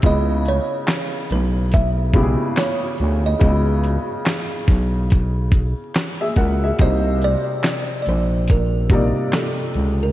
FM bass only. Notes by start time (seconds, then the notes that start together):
0.04 C#2
1.31 B1
3.00 D2
3.42 C#2
4.68 B1
6.37 C#2
6.80 C2
8.07 A#1
9.75 C#2